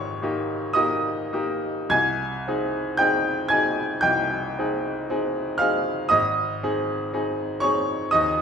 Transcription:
0.00 0.19 G#1 medium
0.00 0.22 A#3 soft
0.00 0.23 D#4 soft
0.00 0.23 G4 medium
0.00 1.93 C5 medium
0.00 0.69 C#5 medium
0.00 1.93 C6 medium
0.00 0.73 C#6 medium
0.22 0.70 A#3 soft
0.22 0.71 D#4 soft
0.22 0.71 G4 medium
0.73 1.28 A#3 medium
0.73 1.28 D#4 medium
0.73 1.28 G4 medium
0.73 1.87 D#5 medium
0.73 1.90 D#6 medium
1.33 1.87 A#3 soft
1.33 1.88 D#4 soft
1.33 1.88 G4 soft
1.90 2.44 C2 medium
1.90 2.95 G#5 medium
1.90 2.98 G#6 loud
2.48 2.95 C4 medium
2.48 2.96 D#4 medium
2.48 2.96 G#4 medium
2.97 3.47 C4 soft
2.97 3.47 D#4 soft
2.97 3.48 G#4 medium
2.97 3.47 G5 medium
2.97 3.50 G6 loud
3.49 3.99 C4 soft
3.49 4.00 D#4 soft
3.49 4.00 G#4 soft
3.49 3.99 G#5 medium
3.49 4.02 G#6 loud
4.01 4.55 C2 medium
4.01 5.56 G5 medium
4.01 5.59 G6 loud
4.59 5.06 C4 soft
4.59 5.06 D#4 soft
4.59 5.07 G#4 soft
5.10 5.57 C4 medium
5.10 5.57 D#4 medium
5.10 5.57 G#4 medium
5.58 6.07 C4 medium
5.58 6.07 D#4 soft
5.58 6.08 G#4 medium
5.58 6.07 F5 medium
5.58 6.10 F6 loud
6.09 6.61 G#1 medium
6.09 7.58 D#5 medium
6.09 7.62 D#6 loud
6.63 7.10 C4 medium
6.63 7.10 D#4 soft
6.63 7.10 G#4 medium
7.13 7.59 C4 soft
7.13 7.59 D#4 medium
7.13 7.59 G#4 medium
7.60 8.08 C4 soft
7.60 8.08 D#4 soft
7.60 8.09 G#4 medium
7.60 8.08 C#5 medium
7.60 8.11 C#6 medium
8.11 8.42 D#2 medium
8.11 8.42 D#5 medium
8.11 8.42 D#6 loud

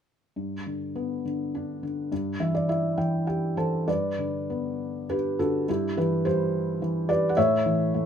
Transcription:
0.36 2.07 G2 soft
0.66 1.24 D3 soft
0.95 2.08 B3 soft
1.25 1.81 D3 soft
1.55 2.10 D4 soft
1.83 2.11 D3 soft
2.12 3.84 G2 soft
2.40 2.96 E3 soft
2.40 2.53 E5 soft
2.55 2.68 D5 soft
2.69 3.84 E4 soft
2.69 2.96 E5 soft
2.98 3.56 E3 soft
2.98 3.25 G5 soft
3.27 3.86 G4 soft
3.27 3.55 G5 soft
3.57 3.87 E3 soft
3.57 3.86 A4 soft
3.57 3.89 C5 soft
3.57 3.86 A5 soft
3.88 5.65 G2 soft
3.88 5.06 B4 soft
3.88 5.14 D5 medium
4.18 5.36 D3 soft
4.50 5.65 B3 soft
5.09 5.67 D4 soft
5.09 5.38 G4 soft
5.09 5.40 B4 medium
5.39 5.68 D3 soft
5.39 5.67 F#4 soft
5.39 5.67 A4 medium
5.69 7.33 G2 soft
5.69 5.96 E4 soft
5.69 5.97 G4 medium
5.97 6.81 E3 soft
5.97 6.24 G4 soft
5.97 6.26 B4 medium
6.25 7.08 G3 soft
6.25 7.05 G4 soft
6.25 7.11 C5 medium
6.82 7.36 E3 soft
7.09 7.36 G3 soft
7.09 7.29 B4 medium
7.09 7.31 D5 medium
7.29 7.36 F#5 medium
7.37 8.06 A2 medium
7.37 8.06 C#5 medium
7.37 8.06 E5 medium
7.66 8.06 E3 soft
7.94 8.06 A3 soft

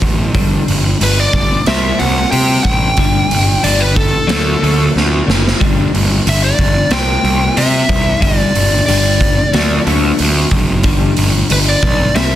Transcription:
0.02 0.35 A1 medium
0.02 0.32 D3 medium
0.02 0.32 F#3 medium
0.02 kick medium
0.02 open hi-hat soft
0.34 0.60 G1 medium
0.34 0.66 G2 medium
0.34 0.66 D3 medium
0.34 0.66 G3 medium
0.34 kick medium
0.34 open hi-hat medium
0.68 0.93 G1 medium
0.68 0.98 G2 medium
0.68 0.98 D3 medium
0.68 open hi-hat soft
1.01 1.25 G1 medium
1.01 1.31 G2 medium
1.01 1.31 D3 medium
1.01 1.20 B4 medium
1.01 open hi-hat medium
1.20 1.67 D5 medium
1.33 1.58 G1 medium
1.33 1.64 G2 medium
1.33 1.64 D3 medium
1.33 kick medium
1.33 open hi-hat soft
1.66 1.92 C2 medium
1.66 1.98 C3 medium
1.66 1.98 G3 loud
1.66 1.99 C4 loud
1.66 2.01 E5 medium
1.66 snare loud
1.66 open hi-hat medium
1.99 2.25 C2 medium
1.99 2.30 C3 medium
1.99 2.31 F#5 medium
1.99 open hi-hat soft
2.32 2.62 C3 medium
2.32 2.57 C3 medium
2.32 2.62 G3 medium
2.32 2.62 G5 loud
2.32 open hi-hat medium
2.63 2.90 A1 medium
2.63 2.95 C3 medium
2.63 2.95 G3 medium
2.63 3.66 G5 medium
2.63 kick medium
2.63 open hi-hat soft
2.97 3.23 G1 medium
2.97 3.29 G2 medium
2.97 3.29 D3 medium
2.97 3.30 G3 medium
2.97 kick medium
2.97 open hi-hat medium
3.31 3.56 G1 medium
3.31 3.61 G2 medium
3.31 3.61 D3 medium
3.31 open hi-hat medium
3.63 4.13 G1 medium
3.63 3.95 G2 medium
3.63 3.95 D3 medium
3.63 3.95 G3 medium
3.63 3.81 D5 medium
3.63 open hi-hat medium
3.81 3.97 B4 medium
3.96 4.26 G2 soft
3.96 4.26 D3 medium
3.96 4.92 A4 medium
3.96 kick medium
3.96 open hi-hat soft
4.27 4.54 D2 medium
4.27 4.59 D3 medium
4.27 4.60 F#3 loud
4.27 4.60 A3 medium
4.27 snare loud
4.27 open hi-hat medium
4.61 4.87 D2 medium
4.61 4.93 D3 medium
4.61 4.93 F#3 medium
4.61 4.93 A3 medium
4.61 open hi-hat soft
4.94 5.20 D2 medium
4.94 5.24 D3 medium
4.94 5.24 F#3 medium
4.94 snare medium
5.27 5.52 F#1 medium
5.27 5.57 D3 medium
5.27 5.58 F#3 medium
5.27 snare medium
5.47 snare medium
5.60 5.86 G1 medium
5.60 5.91 G2 medium
5.60 5.92 D3 medium
5.60 5.92 G3 medium
5.60 kick medium
5.60 open hi-hat soft
5.93 6.18 G1 medium
5.93 6.23 G2 medium
5.93 6.23 D3 medium
5.93 open hi-hat soft
6.26 6.51 G1 medium
6.26 6.56 G2 medium
6.26 6.56 D3 medium
6.26 6.43 E5 medium
6.26 open hi-hat medium
6.44 6.94 D5 medium
6.59 6.84 G1 medium
6.59 6.89 G2 medium
6.59 6.89 D3 medium
6.59 kick medium
6.59 open hi-hat soft
6.91 7.16 C2 medium
6.91 7.22 C3 medium
6.91 7.23 G3 medium
6.91 7.23 C4 loud
6.91 7.60 G5 medium
6.91 snare loud
6.91 open hi-hat medium
7.23 7.48 C2 medium
7.23 7.54 C3 medium
7.23 7.54 G3 medium
7.23 open hi-hat soft
7.57 7.87 C3 medium
7.57 7.82 C3 medium
7.57 7.87 G3 medium
7.57 8.19 E5 medium
7.57 open hi-hat medium
7.89 8.14 C2 medium
7.89 8.19 C3 medium
7.89 8.19 G3 medium
7.89 kick medium
7.89 open hi-hat soft
8.20 8.47 G1 medium
8.20 8.53 G2 medium
8.20 8.53 D3 medium
8.20 8.53 G3 medium
8.20 8.85 D5 medium
8.20 kick medium
8.20 open hi-hat medium
8.54 8.80 G1 medium
8.54 8.84 G2 medium
8.54 8.85 D3 medium
8.54 open hi-hat medium
8.86 9.37 G1 medium
8.86 9.19 G2 medium
8.86 9.20 D3 medium
8.86 9.19 G3 medium
8.86 9.82 D5 medium
8.86 open hi-hat medium
9.20 9.50 G2 medium
9.20 9.51 D3 medium
9.20 kick medium
9.20 open hi-hat medium
9.53 9.78 D2 medium
9.53 9.85 D3 medium
9.53 9.85 F#3 medium
9.53 9.85 A3 loud
9.53 snare loud
9.53 open hi-hat medium
9.86 10.11 D2 medium
9.86 10.17 D3 medium
9.86 10.18 F#3 medium
9.86 10.18 A3 loud
9.86 open hi-hat soft
10.19 10.44 D2 medium
10.19 10.49 D3 medium
10.19 10.49 F#3 medium
10.19 open hi-hat medium
10.51 10.84 F#1 medium
10.51 10.82 D3 medium
10.51 10.82 F#3 medium
10.51 kick medium
10.51 open hi-hat soft
10.83 11.09 G1 medium
10.83 11.15 G2 medium
10.83 11.15 D3 medium
10.83 11.16 G3 medium
10.83 kick medium
10.83 open hi-hat medium
11.16 11.42 G1 medium
11.16 11.47 G2 medium
11.16 11.47 D3 medium
11.16 open hi-hat soft
11.50 11.75 G1 medium
11.50 11.80 G2 medium
11.50 11.80 D3 medium
11.50 11.57 B4 medium
11.50 open hi-hat medium
11.69 12.16 D5 medium
11.83 12.07 B1 medium
11.83 12.13 G2 medium
11.83 12.13 D3 medium
11.83 kick medium
11.83 open hi-hat medium
12.15 12.35 C2 medium
12.15 12.35 C3 medium
12.15 12.35 G3 medium
12.15 12.35 C4 loud
12.15 12.35 E5 medium
12.15 snare medium
12.15 open hi-hat medium

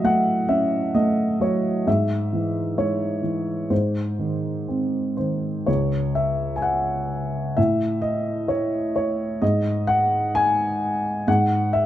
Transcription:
0.00 1.83 A2 medium
0.00 1.40 F#3 soft
0.00 0.04 A3 soft
0.00 0.93 A3 soft
0.00 0.95 D#5 medium
0.00 0.49 E5 medium
0.00 0.05 F#5 medium
0.05 0.50 F#5 medium
0.48 1.83 C#4 soft
0.48 0.91 E5 medium
0.95 1.84 A3 soft
0.95 1.42 D#5 medium
1.40 1.85 F#3 soft
1.40 1.89 C#5 medium
1.87 3.67 G#2 medium
1.87 2.81 E5 medium
2.33 3.21 E3 soft
2.77 3.68 G#3 soft
2.77 3.67 C#5 medium
3.23 3.69 E3 soft
3.70 5.63 G#2 medium
3.70 5.14 C5 medium
4.19 5.17 D#3 soft
4.68 5.64 C4 soft
5.17 5.66 D#3 soft
5.17 5.68 C5 soft
5.66 7.53 C#2 medium
5.66 6.12 C#5 medium
6.15 6.54 E5 medium
6.56 6.64 G#5 medium
6.62 7.59 F#5 medium
7.57 9.38 A2 medium
7.57 8.00 E5 medium
8.02 8.50 D#5 medium
8.48 8.94 C#5 medium
8.96 9.43 C#5 medium
9.42 11.23 G#2 medium
9.42 9.90 D#5 medium
9.87 10.36 F#5 medium
10.35 11.23 G#5 medium
11.28 11.86 G#2 medium
11.28 11.75 F#5 medium
11.73 11.86 E5 medium

